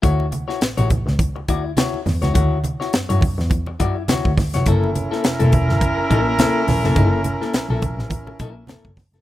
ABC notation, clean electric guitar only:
X:1
M:4/4
L:1/16
Q:"Swing 16ths" 1/4=104
K:Dlyd
V:1 name="Clean electric guitar"
[EFc] z2 [EFc] z [EFc] z4 [EFd] z [EFc] z2 [EFc] | [EFc] z2 [EFc] z [EFc] z4 [EFd] z [EFc] z2 [EFc] | [^A,E=A] z2 [^A,E=A] z [^A,E=A] z4 [^A,E^A] z [A,E=A] z2 [^A,E=A] | [^A,E=A] z2 [^A,E=A] z [^A,E=A] z4 [^A,E^A] z [A,E=A] z2 [^A,E=A] |]